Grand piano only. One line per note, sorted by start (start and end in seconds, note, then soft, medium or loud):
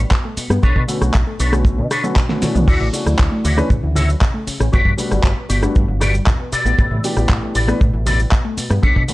0.88 0.99 D3 medium
0.88 0.99 A3 medium
0.88 0.99 B3 medium
0.88 0.99 C#4 medium
0.88 0.99 F#4 loud
1.00 1.14 D3 medium
1.00 1.15 A3 medium
1.00 1.15 B3 medium
1.00 1.15 C#4 medium
1.00 1.15 F#4 medium
1.52 1.74 D3 medium
1.52 1.74 A3 medium
1.52 1.74 B3 medium
1.52 1.74 C#4 medium
1.52 1.75 F#4 loud
2.03 2.17 D3 medium
2.03 2.17 A3 medium
2.03 2.17 B3 medium
2.03 2.17 C#4 medium
2.03 2.18 F#4 loud
2.29 2.40 D3 medium
2.29 2.40 A3 medium
2.29 2.40 B3 medium
2.29 2.40 C#4 medium
2.29 2.40 F#4 loud
2.41 2.90 E3 medium
2.41 2.90 A3 medium
2.41 2.90 C#4 medium
2.41 2.90 D4 medium
2.41 2.90 F#4 medium
2.92 3.03 E3 medium
2.92 3.03 A3 medium
2.92 3.03 C#4 medium
2.92 3.03 D4 medium
2.92 3.03 F#4 medium
3.05 3.54 E3 medium
3.05 3.54 A3 medium
3.05 3.54 D4 medium
3.05 3.55 F#4 medium
3.57 3.71 E3 loud
3.57 3.71 A3 medium
3.57 3.71 C#4 medium
3.57 3.71 D4 medium
3.57 3.71 B4 loud
4.98 5.09 G3 medium
4.98 5.09 A3 medium
4.98 5.09 B3 medium
4.98 5.09 D4 medium
4.98 5.09 F#4 loud
5.11 5.25 G3 medium
5.11 5.25 A3 medium
5.11 5.25 B3 medium
5.11 5.25 D4 medium
5.11 5.25 F#4 medium
5.62 5.84 G3 medium
5.62 5.85 A3 medium
5.62 5.85 B3 medium
5.62 5.85 D4 medium
5.62 5.85 F#4 loud
7.03 7.13 E3 medium
7.03 7.13 A3 medium
7.03 7.14 B3 medium
7.03 7.14 D4 medium
7.03 7.14 G4 medium
7.16 7.65 E3 medium
7.16 7.65 A3 medium
7.16 7.65 B3 medium
7.16 7.65 D4 medium
7.16 7.65 G4 medium
7.67 7.81 E3 loud
7.67 7.81 A3 medium
7.67 7.82 B3 medium
7.67 7.82 D4 medium
7.67 7.82 B4 loud
9.08 9.14 D3 medium
9.08 9.14 A3 medium
9.08 9.14 B3 medium
9.08 9.14 C#4 medium
9.08 9.14 F#4 loud